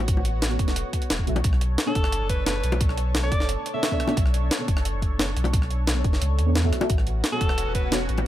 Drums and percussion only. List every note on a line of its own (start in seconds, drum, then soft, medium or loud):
0.08 kick loud
0.08 closed hi-hat medium
0.17 high bongo medium
0.25 closed hi-hat medium
0.42 snare loud
0.42 closed hi-hat medium
0.51 closed hi-hat soft
0.59 kick medium
0.59 closed hi-hat medium
0.68 snare soft
0.68 closed hi-hat soft
0.76 closed hi-hat medium
0.93 kick medium
0.93 closed hi-hat medium
1.02 closed hi-hat soft
1.10 snare loud
1.10 closed hi-hat loud
1.19 kick medium
1.27 closed hi-hat medium
1.36 closed hi-hat soft
1.36 high bongo medium
1.44 kick loud
1.44 closed hi-hat loud
1.53 cross-stick soft
1.61 closed hi-hat medium
1.78 snare loud
1.78 closed hi-hat medium
1.95 kick loud
1.95 closed hi-hat medium
2.04 cross-stick medium
2.12 closed hi-hat medium
2.29 kick medium
2.29 closed hi-hat medium
2.46 snare loud
2.46 closed hi-hat medium
2.64 closed hi-hat medium
2.72 closed hi-hat soft
2.72 high bongo medium
2.81 kick loud
2.81 closed hi-hat medium
2.89 cross-stick soft
2.98 closed hi-hat medium
3.15 snare loud
3.15 closed hi-hat medium
3.32 kick loud
3.32 closed hi-hat medium
3.40 snare soft
3.49 closed hi-hat medium
3.66 closed hi-hat medium
3.83 snare loud
3.83 closed hi-hat medium
3.92 kick medium
4.00 cross-stick soft
4.00 closed hi-hat medium
4.07 cross-stick soft
4.07 closed hi-hat soft
4.07 high bongo medium
4.17 kick loud
4.17 closed hi-hat medium
4.26 cross-stick soft
4.34 closed hi-hat medium
4.51 snare loud
4.51 closed hi-hat medium
4.68 kick loud
4.68 closed hi-hat medium
4.77 cross-stick medium
4.85 closed hi-hat medium
5.02 kick medium
5.02 closed hi-hat medium
5.19 snare loud
5.19 closed hi-hat medium
5.37 closed hi-hat medium
5.44 closed hi-hat soft
5.44 high bongo medium
5.53 kick loud
5.53 closed hi-hat medium
5.62 cross-stick soft
5.71 closed hi-hat medium
5.87 snare loud
5.87 closed hi-hat medium
6.04 kick loud
6.04 closed hi-hat medium
6.13 snare soft
6.22 closed hi-hat medium
6.39 closed hi-hat medium
6.56 snare loud
6.56 closed hi-hat medium
6.64 kick medium
6.73 cross-stick soft
6.73 closed hi-hat medium
6.81 cross-stick soft
6.81 closed hi-hat soft
6.81 high bongo loud
6.90 kick loud
6.90 closed hi-hat medium
6.98 cross-stick soft
7.07 closed hi-hat medium
7.24 snare loud
7.24 closed hi-hat medium
7.41 kick loud
7.41 closed hi-hat medium
7.49 cross-stick medium
7.58 closed hi-hat medium
7.75 kick medium
7.75 closed hi-hat medium
7.92 snare loud
7.92 closed hi-hat medium
8.09 closed hi-hat medium
8.18 closed hi-hat soft
8.18 high bongo medium